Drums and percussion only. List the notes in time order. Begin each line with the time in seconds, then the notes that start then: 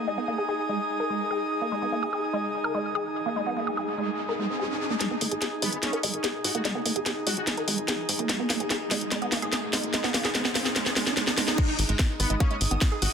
5.01 snare, closed hi-hat
5.21 open hi-hat
5.31 closed hi-hat
5.42 snare, closed hi-hat
5.62 open hi-hat
5.73 closed hi-hat
5.83 snare, closed hi-hat
5.93 closed hi-hat
6.03 open hi-hat
6.14 closed hi-hat
6.24 snare, closed hi-hat
6.44 open hi-hat
6.55 closed hi-hat
6.65 snare, closed hi-hat
6.86 open hi-hat
6.96 closed hi-hat
7.06 snare, closed hi-hat
7.27 open hi-hat
7.37 closed hi-hat
7.47 snare, closed hi-hat
7.57 closed hi-hat
7.68 open hi-hat
7.78 closed hi-hat
7.88 snare, closed hi-hat
8.09 open hi-hat
8.19 closed hi-hat
8.29 snare, closed hi-hat
8.50 snare, open hi-hat
8.60 closed hi-hat
8.70 snare, closed hi-hat
8.91 snare, open hi-hat
9.01 closed hi-hat
9.12 snare, closed hi-hat
9.22 closed hi-hat
9.32 snare, open hi-hat
9.42 closed hi-hat
9.53 snare, closed hi-hat
9.73 snare, open hi-hat
9.83 closed hi-hat
9.94 snare, closed hi-hat
10.04 snare
10.14 snare, open hi-hat
10.25 snare, closed hi-hat
10.35 snare, closed hi-hat
10.45 snare
10.55 snare, open hi-hat
10.66 snare, closed hi-hat
10.76 snare, closed hi-hat
10.86 snare, closed hi-hat
10.96 snare, open hi-hat
11.07 snare, closed hi-hat
11.17 snare, closed hi-hat
11.27 snare
11.38 snare, open hi-hat
11.48 snare, closed hi-hat
11.58 kick, closed hi-hat, crash
11.79 open hi-hat
11.89 closed hi-hat
11.99 kick, snare, closed hi-hat
12.20 open hi-hat
12.30 closed hi-hat
12.40 kick, closed hi-hat
12.51 closed hi-hat
12.61 open hi-hat
12.71 closed hi-hat
12.81 kick, snare, closed hi-hat
13.02 open hi-hat